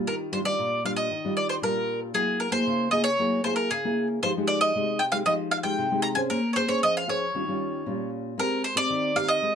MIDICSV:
0, 0, Header, 1, 3, 480
1, 0, Start_track
1, 0, Key_signature, -3, "major"
1, 0, Tempo, 519481
1, 60, Time_signature, 4, 2, 24, 8
1, 8824, End_track
2, 0, Start_track
2, 0, Title_t, "Mandolin"
2, 0, Program_c, 0, 25
2, 69, Note_on_c, 0, 70, 72
2, 133, Note_off_c, 0, 70, 0
2, 303, Note_on_c, 0, 72, 78
2, 350, Note_off_c, 0, 72, 0
2, 419, Note_on_c, 0, 74, 90
2, 755, Note_off_c, 0, 74, 0
2, 791, Note_on_c, 0, 77, 78
2, 837, Note_off_c, 0, 77, 0
2, 891, Note_on_c, 0, 75, 80
2, 1231, Note_off_c, 0, 75, 0
2, 1264, Note_on_c, 0, 74, 75
2, 1377, Note_off_c, 0, 74, 0
2, 1380, Note_on_c, 0, 72, 70
2, 1427, Note_off_c, 0, 72, 0
2, 1510, Note_on_c, 0, 70, 73
2, 1842, Note_off_c, 0, 70, 0
2, 1982, Note_on_c, 0, 68, 82
2, 2206, Note_off_c, 0, 68, 0
2, 2217, Note_on_c, 0, 70, 77
2, 2326, Note_off_c, 0, 70, 0
2, 2329, Note_on_c, 0, 72, 89
2, 2686, Note_off_c, 0, 72, 0
2, 2690, Note_on_c, 0, 75, 81
2, 2802, Note_off_c, 0, 75, 0
2, 2806, Note_on_c, 0, 73, 86
2, 3149, Note_off_c, 0, 73, 0
2, 3179, Note_on_c, 0, 72, 83
2, 3284, Note_off_c, 0, 72, 0
2, 3288, Note_on_c, 0, 70, 72
2, 3420, Note_off_c, 0, 70, 0
2, 3425, Note_on_c, 0, 68, 83
2, 3759, Note_off_c, 0, 68, 0
2, 3906, Note_on_c, 0, 72, 91
2, 3971, Note_off_c, 0, 72, 0
2, 4134, Note_on_c, 0, 74, 95
2, 4255, Note_off_c, 0, 74, 0
2, 4259, Note_on_c, 0, 75, 106
2, 4613, Note_on_c, 0, 79, 91
2, 4632, Note_off_c, 0, 75, 0
2, 4659, Note_off_c, 0, 79, 0
2, 4729, Note_on_c, 0, 77, 96
2, 4775, Note_off_c, 0, 77, 0
2, 4858, Note_on_c, 0, 75, 99
2, 4924, Note_off_c, 0, 75, 0
2, 5095, Note_on_c, 0, 77, 86
2, 5141, Note_off_c, 0, 77, 0
2, 5206, Note_on_c, 0, 79, 88
2, 5562, Note_off_c, 0, 79, 0
2, 5565, Note_on_c, 0, 82, 104
2, 5612, Note_off_c, 0, 82, 0
2, 5683, Note_on_c, 0, 80, 90
2, 5730, Note_off_c, 0, 80, 0
2, 5821, Note_on_c, 0, 70, 86
2, 6031, Note_off_c, 0, 70, 0
2, 6035, Note_on_c, 0, 73, 67
2, 6062, Note_on_c, 0, 72, 87
2, 6064, Note_off_c, 0, 73, 0
2, 6175, Note_off_c, 0, 72, 0
2, 6177, Note_on_c, 0, 73, 82
2, 6292, Note_off_c, 0, 73, 0
2, 6312, Note_on_c, 0, 75, 95
2, 6420, Note_off_c, 0, 75, 0
2, 6440, Note_on_c, 0, 77, 84
2, 6551, Note_off_c, 0, 77, 0
2, 6555, Note_on_c, 0, 73, 78
2, 7472, Note_off_c, 0, 73, 0
2, 7757, Note_on_c, 0, 70, 95
2, 7982, Note_off_c, 0, 70, 0
2, 7985, Note_on_c, 0, 72, 88
2, 8096, Note_off_c, 0, 72, 0
2, 8103, Note_on_c, 0, 74, 103
2, 8464, Note_on_c, 0, 77, 90
2, 8473, Note_off_c, 0, 74, 0
2, 8579, Note_on_c, 0, 75, 105
2, 8587, Note_off_c, 0, 77, 0
2, 8824, Note_off_c, 0, 75, 0
2, 8824, End_track
3, 0, Start_track
3, 0, Title_t, "Nylon-string guitar"
3, 0, Program_c, 1, 24
3, 0, Note_on_c, 1, 55, 58
3, 0, Note_on_c, 1, 62, 53
3, 0, Note_on_c, 1, 65, 62
3, 64, Note_on_c, 1, 51, 63
3, 286, Note_off_c, 1, 55, 0
3, 291, Note_off_c, 1, 62, 0
3, 293, Note_off_c, 1, 65, 0
3, 297, Note_on_c, 1, 55, 54
3, 301, Note_on_c, 1, 62, 54
3, 306, Note_on_c, 1, 65, 61
3, 380, Note_off_c, 1, 55, 0
3, 383, Note_off_c, 1, 62, 0
3, 384, Note_off_c, 1, 65, 0
3, 407, Note_on_c, 1, 55, 51
3, 412, Note_on_c, 1, 62, 47
3, 414, Note_on_c, 1, 65, 57
3, 518, Note_off_c, 1, 51, 0
3, 543, Note_on_c, 1, 46, 64
3, 736, Note_off_c, 1, 55, 0
3, 738, Note_off_c, 1, 65, 0
3, 739, Note_off_c, 1, 62, 0
3, 778, Note_on_c, 1, 55, 55
3, 782, Note_on_c, 1, 65, 52
3, 784, Note_on_c, 1, 62, 47
3, 999, Note_off_c, 1, 46, 0
3, 1005, Note_off_c, 1, 55, 0
3, 1007, Note_off_c, 1, 62, 0
3, 1007, Note_off_c, 1, 65, 0
3, 1024, Note_on_c, 1, 51, 62
3, 1151, Note_on_c, 1, 55, 61
3, 1155, Note_on_c, 1, 62, 64
3, 1162, Note_on_c, 1, 65, 58
3, 1469, Note_off_c, 1, 55, 0
3, 1471, Note_off_c, 1, 62, 0
3, 1472, Note_off_c, 1, 65, 0
3, 1479, Note_off_c, 1, 51, 0
3, 1496, Note_on_c, 1, 46, 62
3, 1499, Note_on_c, 1, 55, 47
3, 1503, Note_on_c, 1, 62, 52
3, 1507, Note_on_c, 1, 65, 53
3, 1942, Note_off_c, 1, 55, 0
3, 1943, Note_off_c, 1, 62, 0
3, 1947, Note_off_c, 1, 65, 0
3, 1956, Note_off_c, 1, 46, 0
3, 1979, Note_on_c, 1, 54, 73
3, 1980, Note_on_c, 1, 58, 52
3, 1984, Note_on_c, 1, 64, 55
3, 1985, Note_on_c, 1, 68, 56
3, 2303, Note_off_c, 1, 58, 0
3, 2304, Note_off_c, 1, 64, 0
3, 2306, Note_off_c, 1, 68, 0
3, 2323, Note_on_c, 1, 58, 60
3, 2327, Note_on_c, 1, 64, 52
3, 2331, Note_on_c, 1, 68, 54
3, 2438, Note_off_c, 1, 54, 0
3, 2465, Note_on_c, 1, 49, 71
3, 2655, Note_off_c, 1, 58, 0
3, 2657, Note_off_c, 1, 64, 0
3, 2659, Note_off_c, 1, 68, 0
3, 2697, Note_on_c, 1, 58, 57
3, 2703, Note_on_c, 1, 64, 50
3, 2704, Note_on_c, 1, 68, 63
3, 2842, Note_off_c, 1, 58, 0
3, 2843, Note_off_c, 1, 64, 0
3, 2845, Note_off_c, 1, 68, 0
3, 2920, Note_off_c, 1, 49, 0
3, 2946, Note_on_c, 1, 54, 61
3, 2951, Note_on_c, 1, 58, 54
3, 2953, Note_on_c, 1, 64, 48
3, 2955, Note_on_c, 1, 68, 52
3, 3148, Note_off_c, 1, 58, 0
3, 3150, Note_off_c, 1, 64, 0
3, 3151, Note_off_c, 1, 68, 0
3, 3181, Note_on_c, 1, 58, 59
3, 3186, Note_on_c, 1, 64, 55
3, 3193, Note_on_c, 1, 68, 69
3, 3402, Note_off_c, 1, 54, 0
3, 3409, Note_off_c, 1, 58, 0
3, 3409, Note_off_c, 1, 64, 0
3, 3411, Note_off_c, 1, 68, 0
3, 3426, Note_on_c, 1, 49, 55
3, 3555, Note_on_c, 1, 58, 64
3, 3560, Note_on_c, 1, 64, 60
3, 3560, Note_on_c, 1, 68, 67
3, 3872, Note_off_c, 1, 58, 0
3, 3873, Note_off_c, 1, 64, 0
3, 3874, Note_off_c, 1, 68, 0
3, 3881, Note_off_c, 1, 49, 0
3, 3907, Note_on_c, 1, 53, 63
3, 3907, Note_on_c, 1, 56, 62
3, 3910, Note_on_c, 1, 63, 55
3, 3915, Note_on_c, 1, 67, 60
3, 3986, Note_off_c, 1, 56, 0
3, 3989, Note_off_c, 1, 63, 0
3, 3991, Note_off_c, 1, 67, 0
3, 4037, Note_on_c, 1, 56, 60
3, 4040, Note_on_c, 1, 63, 65
3, 4047, Note_on_c, 1, 67, 66
3, 4352, Note_off_c, 1, 56, 0
3, 4354, Note_off_c, 1, 63, 0
3, 4357, Note_off_c, 1, 67, 0
3, 4362, Note_off_c, 1, 53, 0
3, 4390, Note_on_c, 1, 48, 64
3, 4392, Note_on_c, 1, 56, 56
3, 4395, Note_on_c, 1, 63, 50
3, 4399, Note_on_c, 1, 67, 62
3, 4612, Note_off_c, 1, 56, 0
3, 4614, Note_off_c, 1, 63, 0
3, 4617, Note_off_c, 1, 67, 0
3, 4734, Note_on_c, 1, 56, 62
3, 4737, Note_on_c, 1, 63, 58
3, 4739, Note_on_c, 1, 67, 66
3, 4821, Note_off_c, 1, 56, 0
3, 4821, Note_off_c, 1, 63, 0
3, 4823, Note_off_c, 1, 67, 0
3, 4844, Note_off_c, 1, 48, 0
3, 4862, Note_on_c, 1, 53, 67
3, 4864, Note_on_c, 1, 56, 45
3, 4868, Note_on_c, 1, 63, 50
3, 4874, Note_on_c, 1, 67, 56
3, 5185, Note_off_c, 1, 56, 0
3, 5188, Note_off_c, 1, 63, 0
3, 5191, Note_off_c, 1, 67, 0
3, 5209, Note_on_c, 1, 56, 74
3, 5213, Note_on_c, 1, 63, 69
3, 5217, Note_on_c, 1, 67, 66
3, 5319, Note_off_c, 1, 53, 0
3, 5343, Note_on_c, 1, 48, 60
3, 5418, Note_off_c, 1, 56, 0
3, 5420, Note_off_c, 1, 63, 0
3, 5422, Note_off_c, 1, 67, 0
3, 5466, Note_on_c, 1, 56, 65
3, 5471, Note_on_c, 1, 63, 64
3, 5476, Note_on_c, 1, 67, 63
3, 5667, Note_off_c, 1, 56, 0
3, 5668, Note_off_c, 1, 63, 0
3, 5672, Note_off_c, 1, 67, 0
3, 5689, Note_on_c, 1, 61, 67
3, 5695, Note_on_c, 1, 68, 63
3, 5700, Note_on_c, 1, 72, 71
3, 5799, Note_off_c, 1, 48, 0
3, 5825, Note_on_c, 1, 58, 71
3, 5898, Note_off_c, 1, 61, 0
3, 5901, Note_off_c, 1, 68, 0
3, 5904, Note_off_c, 1, 72, 0
3, 6061, Note_on_c, 1, 61, 58
3, 6066, Note_on_c, 1, 72, 61
3, 6067, Note_on_c, 1, 68, 51
3, 6134, Note_off_c, 1, 61, 0
3, 6136, Note_off_c, 1, 68, 0
3, 6137, Note_off_c, 1, 72, 0
3, 6172, Note_on_c, 1, 61, 52
3, 6177, Note_on_c, 1, 68, 54
3, 6181, Note_on_c, 1, 72, 65
3, 6280, Note_off_c, 1, 58, 0
3, 6307, Note_on_c, 1, 53, 60
3, 6500, Note_off_c, 1, 61, 0
3, 6501, Note_off_c, 1, 68, 0
3, 6504, Note_off_c, 1, 72, 0
3, 6536, Note_on_c, 1, 61, 54
3, 6541, Note_on_c, 1, 68, 63
3, 6548, Note_on_c, 1, 72, 61
3, 6694, Note_off_c, 1, 61, 0
3, 6697, Note_off_c, 1, 68, 0
3, 6698, Note_off_c, 1, 72, 0
3, 6761, Note_off_c, 1, 53, 0
3, 6788, Note_on_c, 1, 51, 62
3, 6790, Note_on_c, 1, 55, 51
3, 6794, Note_on_c, 1, 61, 50
3, 6801, Note_on_c, 1, 65, 55
3, 6868, Note_off_c, 1, 55, 0
3, 6871, Note_off_c, 1, 61, 0
3, 6873, Note_off_c, 1, 65, 0
3, 6911, Note_on_c, 1, 55, 57
3, 6917, Note_on_c, 1, 61, 60
3, 6919, Note_on_c, 1, 65, 63
3, 7229, Note_off_c, 1, 55, 0
3, 7230, Note_off_c, 1, 61, 0
3, 7233, Note_off_c, 1, 65, 0
3, 7242, Note_off_c, 1, 51, 0
3, 7266, Note_on_c, 1, 46, 53
3, 7266, Note_on_c, 1, 55, 50
3, 7270, Note_on_c, 1, 61, 46
3, 7270, Note_on_c, 1, 65, 56
3, 7706, Note_off_c, 1, 55, 0
3, 7707, Note_off_c, 1, 61, 0
3, 7708, Note_off_c, 1, 65, 0
3, 7721, Note_off_c, 1, 46, 0
3, 7740, Note_on_c, 1, 56, 66
3, 7744, Note_on_c, 1, 60, 48
3, 7748, Note_on_c, 1, 70, 55
3, 7753, Note_on_c, 1, 67, 54
3, 7968, Note_off_c, 1, 60, 0
3, 7969, Note_off_c, 1, 67, 0
3, 7971, Note_off_c, 1, 70, 0
3, 8086, Note_on_c, 1, 60, 56
3, 8090, Note_on_c, 1, 67, 56
3, 8095, Note_on_c, 1, 70, 56
3, 8199, Note_off_c, 1, 56, 0
3, 8223, Note_on_c, 1, 51, 67
3, 8416, Note_off_c, 1, 60, 0
3, 8418, Note_off_c, 1, 67, 0
3, 8419, Note_off_c, 1, 70, 0
3, 8457, Note_on_c, 1, 60, 52
3, 8461, Note_on_c, 1, 67, 54
3, 8469, Note_on_c, 1, 70, 68
3, 8679, Note_off_c, 1, 51, 0
3, 8705, Note_on_c, 1, 56, 64
3, 8781, Note_off_c, 1, 60, 0
3, 8784, Note_off_c, 1, 67, 0
3, 8785, Note_off_c, 1, 70, 0
3, 8824, Note_off_c, 1, 56, 0
3, 8824, End_track
0, 0, End_of_file